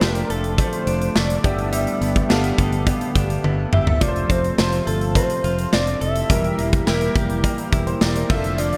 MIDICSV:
0, 0, Header, 1, 7, 480
1, 0, Start_track
1, 0, Tempo, 571429
1, 1451, Time_signature, 4, 2, 24, 8
1, 7369, End_track
2, 0, Start_track
2, 0, Title_t, "Analog synth lead"
2, 0, Program_c, 0, 81
2, 0, Note_on_c, 0, 72, 102
2, 115, Note_off_c, 0, 72, 0
2, 115, Note_on_c, 0, 70, 102
2, 252, Note_on_c, 0, 69, 90
2, 264, Note_off_c, 0, 70, 0
2, 492, Note_on_c, 0, 72, 105
2, 504, Note_off_c, 0, 69, 0
2, 973, Note_on_c, 0, 74, 97
2, 986, Note_off_c, 0, 72, 0
2, 1213, Note_on_c, 0, 76, 104
2, 1226, Note_off_c, 0, 74, 0
2, 1932, Note_off_c, 0, 76, 0
2, 3136, Note_on_c, 0, 76, 113
2, 3376, Note_on_c, 0, 74, 118
2, 3388, Note_off_c, 0, 76, 0
2, 3616, Note_on_c, 0, 72, 104
2, 3628, Note_off_c, 0, 74, 0
2, 4094, Note_on_c, 0, 69, 88
2, 4106, Note_off_c, 0, 72, 0
2, 4327, Note_off_c, 0, 69, 0
2, 4332, Note_on_c, 0, 72, 97
2, 4778, Note_off_c, 0, 72, 0
2, 4812, Note_on_c, 0, 74, 100
2, 5035, Note_off_c, 0, 74, 0
2, 5052, Note_on_c, 0, 76, 105
2, 5738, Note_off_c, 0, 76, 0
2, 6979, Note_on_c, 0, 76, 100
2, 7218, Note_on_c, 0, 74, 108
2, 7230, Note_off_c, 0, 76, 0
2, 7369, Note_off_c, 0, 74, 0
2, 7369, End_track
3, 0, Start_track
3, 0, Title_t, "Grand piano"
3, 0, Program_c, 1, 0
3, 0, Control_c, 1, 64, 127
3, 0, Note_on_c, 1, 62, 73
3, 0, Note_on_c, 1, 65, 71
3, 0, Note_on_c, 1, 69, 84
3, 4, Note_off_c, 1, 62, 0
3, 4, Note_on_c, 1, 62, 78
3, 10, Note_off_c, 1, 65, 0
3, 10, Note_on_c, 1, 65, 71
3, 14, Note_on_c, 1, 67, 81
3, 918, Note_off_c, 1, 62, 0
3, 920, Note_off_c, 1, 65, 0
3, 922, Note_off_c, 1, 67, 0
3, 1206, Note_on_c, 1, 59, 82
3, 1208, Note_on_c, 1, 62, 74
3, 1211, Note_on_c, 1, 43, 65
3, 1211, Note_on_c, 1, 67, 72
3, 1213, Note_off_c, 1, 69, 0
3, 1213, Note_on_c, 1, 69, 75
3, 1217, Note_on_c, 1, 74, 82
3, 1222, Control_c, 1, 64, 0
3, 1368, Control_c, 1, 64, 127
3, 1891, Note_off_c, 1, 59, 0
3, 1892, Note_off_c, 1, 62, 0
3, 1893, Note_off_c, 1, 67, 0
3, 1895, Note_off_c, 1, 69, 0
3, 1896, Note_off_c, 1, 74, 0
3, 1897, Note_off_c, 1, 43, 0
3, 1925, Note_on_c, 1, 59, 91
3, 1927, Note_on_c, 1, 62, 77
3, 1929, Note_on_c, 1, 67, 79
3, 1933, Note_on_c, 1, 69, 77
3, 1935, Note_on_c, 1, 77, 98
3, 2838, Note_off_c, 1, 59, 0
3, 2839, Note_off_c, 1, 62, 0
3, 2840, Note_off_c, 1, 67, 0
3, 2842, Note_off_c, 1, 69, 0
3, 2843, Note_off_c, 1, 77, 0
3, 3365, Note_on_c, 1, 65, 75
3, 3370, Note_on_c, 1, 69, 68
3, 3375, Note_on_c, 1, 70, 67
3, 3381, Control_c, 1, 64, 0
3, 3428, Note_off_c, 1, 70, 0
3, 3430, Note_on_c, 1, 72, 80
3, 3546, Control_c, 1, 64, 127
3, 3823, Note_off_c, 1, 65, 0
3, 3826, Note_off_c, 1, 69, 0
3, 3844, Note_off_c, 1, 72, 0
3, 3847, Note_on_c, 1, 65, 72
3, 3852, Note_on_c, 1, 69, 68
3, 3857, Note_on_c, 1, 72, 83
3, 4759, Note_off_c, 1, 65, 0
3, 4761, Note_off_c, 1, 69, 0
3, 4764, Note_off_c, 1, 72, 0
3, 5286, Note_on_c, 1, 64, 75
3, 5290, Note_on_c, 1, 67, 68
3, 5291, Note_on_c, 1, 52, 64
3, 5296, Note_on_c, 1, 70, 86
3, 5304, Control_c, 1, 64, 0
3, 5460, Control_c, 1, 64, 127
3, 5743, Note_off_c, 1, 64, 0
3, 5746, Note_off_c, 1, 67, 0
3, 5748, Note_off_c, 1, 70, 0
3, 5766, Note_on_c, 1, 64, 86
3, 5771, Note_on_c, 1, 67, 81
3, 5776, Note_on_c, 1, 70, 101
3, 5977, Note_off_c, 1, 52, 0
3, 6493, Note_off_c, 1, 70, 0
3, 6610, Note_on_c, 1, 72, 66
3, 6678, Note_off_c, 1, 64, 0
3, 6681, Note_off_c, 1, 67, 0
3, 6724, Note_off_c, 1, 72, 0
3, 6731, Note_on_c, 1, 74, 74
3, 6845, Note_off_c, 1, 74, 0
3, 6852, Note_on_c, 1, 70, 66
3, 6967, Note_on_c, 1, 62, 77
3, 6972, Note_on_c, 1, 65, 75
3, 6977, Note_on_c, 1, 69, 82
3, 6983, Control_c, 1, 64, 0
3, 7080, Note_off_c, 1, 70, 0
3, 7129, Control_c, 1, 64, 127
3, 7369, Note_off_c, 1, 62, 0
3, 7369, Note_off_c, 1, 65, 0
3, 7369, Note_off_c, 1, 69, 0
3, 7369, End_track
4, 0, Start_track
4, 0, Title_t, "Clean electric guitar"
4, 0, Program_c, 2, 27
4, 0, Note_on_c, 2, 53, 84
4, 0, Note_on_c, 2, 57, 64
4, 15, Note_on_c, 2, 62, 65
4, 253, Note_on_c, 2, 69, 69
4, 489, Note_off_c, 2, 57, 0
4, 492, Note_on_c, 2, 57, 73
4, 729, Note_off_c, 2, 62, 0
4, 732, Note_on_c, 2, 62, 67
4, 969, Note_off_c, 2, 57, 0
4, 972, Note_on_c, 2, 57, 67
4, 1208, Note_off_c, 2, 53, 0
4, 1211, Note_on_c, 2, 55, 85
4, 1440, Note_off_c, 2, 55, 0
4, 1450, Note_on_c, 2, 55, 86
4, 1475, Note_off_c, 2, 57, 0
4, 1475, Note_off_c, 2, 69, 0
4, 1691, Note_on_c, 2, 59, 64
4, 1927, Note_off_c, 2, 62, 0
4, 1930, Note_on_c, 2, 62, 65
4, 2171, Note_on_c, 2, 69, 66
4, 2401, Note_off_c, 2, 59, 0
4, 2411, Note_on_c, 2, 59, 67
4, 2641, Note_off_c, 2, 62, 0
4, 2651, Note_on_c, 2, 62, 64
4, 2881, Note_off_c, 2, 59, 0
4, 2891, Note_on_c, 2, 59, 64
4, 3127, Note_off_c, 2, 69, 0
4, 3130, Note_on_c, 2, 67, 63
4, 3252, Note_off_c, 2, 67, 0
4, 3252, Note_on_c, 2, 69, 60
4, 3366, Note_off_c, 2, 55, 0
4, 3370, Note_on_c, 2, 53, 81
4, 3419, Note_off_c, 2, 59, 0
4, 3419, Note_off_c, 2, 62, 0
4, 3419, Note_off_c, 2, 69, 0
4, 3610, Note_on_c, 2, 60, 63
4, 3848, Note_on_c, 2, 65, 64
4, 4090, Note_on_c, 2, 69, 65
4, 4320, Note_off_c, 2, 60, 0
4, 4330, Note_on_c, 2, 60, 72
4, 4561, Note_off_c, 2, 65, 0
4, 4571, Note_on_c, 2, 65, 63
4, 4799, Note_off_c, 2, 60, 0
4, 4810, Note_on_c, 2, 60, 64
4, 5040, Note_off_c, 2, 69, 0
4, 5050, Note_on_c, 2, 69, 67
4, 5286, Note_off_c, 2, 53, 0
4, 5289, Note_on_c, 2, 55, 85
4, 5338, Note_off_c, 2, 60, 0
4, 5338, Note_off_c, 2, 69, 0
4, 5339, Note_off_c, 2, 65, 0
4, 5529, Note_on_c, 2, 58, 65
4, 5770, Note_on_c, 2, 64, 63
4, 6010, Note_on_c, 2, 67, 64
4, 6239, Note_off_c, 2, 58, 0
4, 6249, Note_on_c, 2, 58, 72
4, 6480, Note_off_c, 2, 64, 0
4, 6490, Note_on_c, 2, 64, 66
4, 6719, Note_off_c, 2, 58, 0
4, 6730, Note_on_c, 2, 58, 65
4, 6966, Note_off_c, 2, 55, 0
4, 6969, Note_on_c, 2, 53, 83
4, 7018, Note_off_c, 2, 58, 0
4, 7018, Note_off_c, 2, 64, 0
4, 7018, Note_off_c, 2, 67, 0
4, 7200, Note_off_c, 2, 53, 0
4, 7210, Note_on_c, 2, 53, 86
4, 7369, Note_off_c, 2, 53, 0
4, 7369, End_track
5, 0, Start_track
5, 0, Title_t, "Analog synth pad"
5, 0, Program_c, 3, 89
5, 0, Note_on_c, 3, 50, 80
5, 0, Note_on_c, 3, 53, 77
5, 0, Note_on_c, 3, 57, 76
5, 0, Note_on_c, 3, 65, 91
5, 1191, Note_off_c, 3, 53, 0
5, 1192, Note_off_c, 3, 57, 0
5, 1192, Note_off_c, 3, 65, 0
5, 1209, Note_on_c, 3, 57, 74
5, 1209, Note_on_c, 3, 59, 74
5, 1209, Note_on_c, 3, 67, 91
5, 3337, Note_off_c, 3, 50, 0
5, 3348, Note_off_c, 3, 59, 0
5, 3348, Note_off_c, 3, 67, 0
5, 3370, Note_on_c, 3, 53, 77
5, 3371, Note_on_c, 3, 48, 81
5, 3372, Note_on_c, 3, 65, 92
5, 5256, Note_off_c, 3, 57, 0
5, 5271, Note_off_c, 3, 53, 0
5, 5272, Note_off_c, 3, 48, 0
5, 5272, Note_off_c, 3, 65, 0
5, 5289, Note_on_c, 3, 55, 77
5, 5290, Note_on_c, 3, 52, 86
5, 5290, Note_on_c, 3, 58, 80
5, 5290, Note_on_c, 3, 67, 90
5, 6953, Note_off_c, 3, 55, 0
5, 6954, Note_off_c, 3, 52, 0
5, 6954, Note_off_c, 3, 58, 0
5, 6954, Note_off_c, 3, 67, 0
5, 6971, Note_on_c, 3, 50, 79
5, 6971, Note_on_c, 3, 65, 89
5, 6972, Note_on_c, 3, 53, 71
5, 6972, Note_on_c, 3, 57, 78
5, 7369, Note_off_c, 3, 50, 0
5, 7369, Note_off_c, 3, 53, 0
5, 7369, Note_off_c, 3, 57, 0
5, 7369, Note_off_c, 3, 65, 0
5, 7369, End_track
6, 0, Start_track
6, 0, Title_t, "Fingered electric bass"
6, 0, Program_c, 4, 33
6, 12, Note_on_c, 4, 29, 114
6, 185, Note_off_c, 4, 29, 0
6, 251, Note_on_c, 4, 29, 95
6, 510, Note_off_c, 4, 29, 0
6, 731, Note_on_c, 4, 29, 102
6, 904, Note_off_c, 4, 29, 0
6, 971, Note_on_c, 4, 29, 98
6, 1144, Note_off_c, 4, 29, 0
6, 1212, Note_on_c, 4, 31, 97
6, 1557, Note_off_c, 4, 31, 0
6, 1690, Note_on_c, 4, 31, 96
6, 1863, Note_off_c, 4, 31, 0
6, 1930, Note_on_c, 4, 31, 106
6, 2103, Note_off_c, 4, 31, 0
6, 2171, Note_on_c, 4, 31, 101
6, 2430, Note_off_c, 4, 31, 0
6, 2651, Note_on_c, 4, 31, 100
6, 2823, Note_off_c, 4, 31, 0
6, 2890, Note_on_c, 4, 31, 96
6, 3063, Note_off_c, 4, 31, 0
6, 3129, Note_on_c, 4, 31, 93
6, 3303, Note_off_c, 4, 31, 0
6, 3372, Note_on_c, 4, 29, 101
6, 3544, Note_off_c, 4, 29, 0
6, 3609, Note_on_c, 4, 29, 103
6, 3783, Note_off_c, 4, 29, 0
6, 3851, Note_on_c, 4, 29, 105
6, 4024, Note_off_c, 4, 29, 0
6, 4090, Note_on_c, 4, 31, 100
6, 4350, Note_off_c, 4, 31, 0
6, 4570, Note_on_c, 4, 29, 104
6, 4743, Note_off_c, 4, 29, 0
6, 4811, Note_on_c, 4, 29, 98
6, 4984, Note_off_c, 4, 29, 0
6, 5051, Note_on_c, 4, 29, 99
6, 5224, Note_off_c, 4, 29, 0
6, 5290, Note_on_c, 4, 28, 109
6, 5463, Note_off_c, 4, 28, 0
6, 5531, Note_on_c, 4, 28, 90
6, 5704, Note_off_c, 4, 28, 0
6, 5772, Note_on_c, 4, 28, 106
6, 5944, Note_off_c, 4, 28, 0
6, 6011, Note_on_c, 4, 29, 90
6, 6270, Note_off_c, 4, 29, 0
6, 6489, Note_on_c, 4, 28, 98
6, 6663, Note_off_c, 4, 28, 0
6, 6731, Note_on_c, 4, 28, 107
6, 6904, Note_off_c, 4, 28, 0
6, 6971, Note_on_c, 4, 29, 96
6, 7317, Note_off_c, 4, 29, 0
6, 7369, End_track
7, 0, Start_track
7, 0, Title_t, "Drums"
7, 10, Note_on_c, 9, 54, 65
7, 10, Note_on_c, 9, 56, 66
7, 11, Note_on_c, 9, 38, 120
7, 94, Note_off_c, 9, 54, 0
7, 94, Note_off_c, 9, 56, 0
7, 95, Note_off_c, 9, 38, 0
7, 127, Note_on_c, 9, 42, 57
7, 211, Note_off_c, 9, 42, 0
7, 253, Note_on_c, 9, 42, 74
7, 337, Note_off_c, 9, 42, 0
7, 370, Note_on_c, 9, 42, 47
7, 454, Note_off_c, 9, 42, 0
7, 490, Note_on_c, 9, 36, 93
7, 492, Note_on_c, 9, 56, 75
7, 494, Note_on_c, 9, 42, 88
7, 574, Note_off_c, 9, 36, 0
7, 576, Note_off_c, 9, 56, 0
7, 578, Note_off_c, 9, 42, 0
7, 611, Note_on_c, 9, 42, 60
7, 695, Note_off_c, 9, 42, 0
7, 732, Note_on_c, 9, 42, 78
7, 816, Note_off_c, 9, 42, 0
7, 853, Note_on_c, 9, 42, 54
7, 937, Note_off_c, 9, 42, 0
7, 971, Note_on_c, 9, 38, 108
7, 972, Note_on_c, 9, 54, 62
7, 972, Note_on_c, 9, 56, 69
7, 1055, Note_off_c, 9, 38, 0
7, 1056, Note_off_c, 9, 54, 0
7, 1056, Note_off_c, 9, 56, 0
7, 1093, Note_on_c, 9, 42, 60
7, 1177, Note_off_c, 9, 42, 0
7, 1212, Note_on_c, 9, 36, 113
7, 1213, Note_on_c, 9, 42, 66
7, 1296, Note_off_c, 9, 36, 0
7, 1297, Note_off_c, 9, 42, 0
7, 1332, Note_on_c, 9, 42, 54
7, 1416, Note_off_c, 9, 42, 0
7, 1451, Note_on_c, 9, 42, 104
7, 1451, Note_on_c, 9, 56, 75
7, 1535, Note_off_c, 9, 42, 0
7, 1535, Note_off_c, 9, 56, 0
7, 1572, Note_on_c, 9, 42, 49
7, 1656, Note_off_c, 9, 42, 0
7, 1694, Note_on_c, 9, 42, 71
7, 1778, Note_off_c, 9, 42, 0
7, 1813, Note_on_c, 9, 42, 50
7, 1814, Note_on_c, 9, 36, 99
7, 1897, Note_off_c, 9, 42, 0
7, 1898, Note_off_c, 9, 36, 0
7, 1931, Note_on_c, 9, 54, 69
7, 1931, Note_on_c, 9, 56, 66
7, 1932, Note_on_c, 9, 38, 115
7, 2015, Note_off_c, 9, 54, 0
7, 2015, Note_off_c, 9, 56, 0
7, 2016, Note_off_c, 9, 38, 0
7, 2049, Note_on_c, 9, 42, 56
7, 2133, Note_off_c, 9, 42, 0
7, 2171, Note_on_c, 9, 36, 93
7, 2172, Note_on_c, 9, 42, 74
7, 2255, Note_off_c, 9, 36, 0
7, 2256, Note_off_c, 9, 42, 0
7, 2289, Note_on_c, 9, 42, 51
7, 2373, Note_off_c, 9, 42, 0
7, 2408, Note_on_c, 9, 36, 100
7, 2410, Note_on_c, 9, 42, 87
7, 2412, Note_on_c, 9, 56, 71
7, 2492, Note_off_c, 9, 36, 0
7, 2494, Note_off_c, 9, 42, 0
7, 2496, Note_off_c, 9, 56, 0
7, 2529, Note_on_c, 9, 42, 57
7, 2613, Note_off_c, 9, 42, 0
7, 2649, Note_on_c, 9, 42, 75
7, 2650, Note_on_c, 9, 36, 93
7, 2733, Note_off_c, 9, 42, 0
7, 2734, Note_off_c, 9, 36, 0
7, 2772, Note_on_c, 9, 42, 59
7, 2856, Note_off_c, 9, 42, 0
7, 2892, Note_on_c, 9, 48, 64
7, 2892, Note_on_c, 9, 56, 66
7, 2976, Note_off_c, 9, 48, 0
7, 2976, Note_off_c, 9, 56, 0
7, 3130, Note_on_c, 9, 45, 96
7, 3214, Note_off_c, 9, 45, 0
7, 3251, Note_on_c, 9, 43, 94
7, 3335, Note_off_c, 9, 43, 0
7, 3369, Note_on_c, 9, 56, 73
7, 3371, Note_on_c, 9, 36, 116
7, 3372, Note_on_c, 9, 42, 103
7, 3453, Note_off_c, 9, 56, 0
7, 3455, Note_off_c, 9, 36, 0
7, 3456, Note_off_c, 9, 42, 0
7, 3494, Note_on_c, 9, 42, 46
7, 3578, Note_off_c, 9, 42, 0
7, 3609, Note_on_c, 9, 36, 84
7, 3614, Note_on_c, 9, 42, 68
7, 3693, Note_off_c, 9, 36, 0
7, 3698, Note_off_c, 9, 42, 0
7, 3733, Note_on_c, 9, 42, 51
7, 3817, Note_off_c, 9, 42, 0
7, 3849, Note_on_c, 9, 56, 66
7, 3850, Note_on_c, 9, 54, 66
7, 3851, Note_on_c, 9, 38, 114
7, 3933, Note_off_c, 9, 56, 0
7, 3934, Note_off_c, 9, 54, 0
7, 3935, Note_off_c, 9, 38, 0
7, 3969, Note_on_c, 9, 42, 54
7, 4053, Note_off_c, 9, 42, 0
7, 4093, Note_on_c, 9, 42, 73
7, 4177, Note_off_c, 9, 42, 0
7, 4211, Note_on_c, 9, 42, 49
7, 4295, Note_off_c, 9, 42, 0
7, 4329, Note_on_c, 9, 36, 92
7, 4331, Note_on_c, 9, 56, 69
7, 4332, Note_on_c, 9, 42, 91
7, 4413, Note_off_c, 9, 36, 0
7, 4415, Note_off_c, 9, 56, 0
7, 4416, Note_off_c, 9, 42, 0
7, 4450, Note_on_c, 9, 42, 61
7, 4534, Note_off_c, 9, 42, 0
7, 4571, Note_on_c, 9, 42, 71
7, 4655, Note_off_c, 9, 42, 0
7, 4692, Note_on_c, 9, 42, 57
7, 4776, Note_off_c, 9, 42, 0
7, 4811, Note_on_c, 9, 38, 115
7, 4811, Note_on_c, 9, 56, 68
7, 4812, Note_on_c, 9, 54, 63
7, 4895, Note_off_c, 9, 38, 0
7, 4895, Note_off_c, 9, 56, 0
7, 4896, Note_off_c, 9, 54, 0
7, 4932, Note_on_c, 9, 42, 53
7, 5016, Note_off_c, 9, 42, 0
7, 5052, Note_on_c, 9, 42, 64
7, 5136, Note_off_c, 9, 42, 0
7, 5171, Note_on_c, 9, 42, 56
7, 5255, Note_off_c, 9, 42, 0
7, 5290, Note_on_c, 9, 42, 100
7, 5290, Note_on_c, 9, 56, 76
7, 5291, Note_on_c, 9, 36, 117
7, 5374, Note_off_c, 9, 42, 0
7, 5374, Note_off_c, 9, 56, 0
7, 5375, Note_off_c, 9, 36, 0
7, 5412, Note_on_c, 9, 42, 49
7, 5496, Note_off_c, 9, 42, 0
7, 5533, Note_on_c, 9, 42, 71
7, 5617, Note_off_c, 9, 42, 0
7, 5652, Note_on_c, 9, 42, 52
7, 5653, Note_on_c, 9, 36, 101
7, 5736, Note_off_c, 9, 42, 0
7, 5737, Note_off_c, 9, 36, 0
7, 5769, Note_on_c, 9, 56, 68
7, 5771, Note_on_c, 9, 54, 67
7, 5772, Note_on_c, 9, 38, 112
7, 5853, Note_off_c, 9, 56, 0
7, 5855, Note_off_c, 9, 54, 0
7, 5856, Note_off_c, 9, 38, 0
7, 5889, Note_on_c, 9, 42, 59
7, 5973, Note_off_c, 9, 42, 0
7, 6011, Note_on_c, 9, 36, 103
7, 6013, Note_on_c, 9, 42, 71
7, 6095, Note_off_c, 9, 36, 0
7, 6097, Note_off_c, 9, 42, 0
7, 6129, Note_on_c, 9, 42, 51
7, 6213, Note_off_c, 9, 42, 0
7, 6248, Note_on_c, 9, 36, 94
7, 6251, Note_on_c, 9, 42, 89
7, 6252, Note_on_c, 9, 56, 71
7, 6332, Note_off_c, 9, 36, 0
7, 6335, Note_off_c, 9, 42, 0
7, 6336, Note_off_c, 9, 56, 0
7, 6368, Note_on_c, 9, 42, 62
7, 6452, Note_off_c, 9, 42, 0
7, 6489, Note_on_c, 9, 36, 99
7, 6489, Note_on_c, 9, 42, 79
7, 6573, Note_off_c, 9, 36, 0
7, 6573, Note_off_c, 9, 42, 0
7, 6612, Note_on_c, 9, 42, 56
7, 6696, Note_off_c, 9, 42, 0
7, 6730, Note_on_c, 9, 38, 113
7, 6731, Note_on_c, 9, 54, 64
7, 6732, Note_on_c, 9, 56, 67
7, 6814, Note_off_c, 9, 38, 0
7, 6815, Note_off_c, 9, 54, 0
7, 6816, Note_off_c, 9, 56, 0
7, 6852, Note_on_c, 9, 42, 57
7, 6936, Note_off_c, 9, 42, 0
7, 6971, Note_on_c, 9, 36, 113
7, 6971, Note_on_c, 9, 49, 73
7, 7055, Note_off_c, 9, 36, 0
7, 7055, Note_off_c, 9, 49, 0
7, 7091, Note_on_c, 9, 42, 57
7, 7175, Note_off_c, 9, 42, 0
7, 7209, Note_on_c, 9, 42, 105
7, 7210, Note_on_c, 9, 56, 72
7, 7293, Note_off_c, 9, 42, 0
7, 7294, Note_off_c, 9, 56, 0
7, 7331, Note_on_c, 9, 42, 50
7, 7369, Note_off_c, 9, 42, 0
7, 7369, End_track
0, 0, End_of_file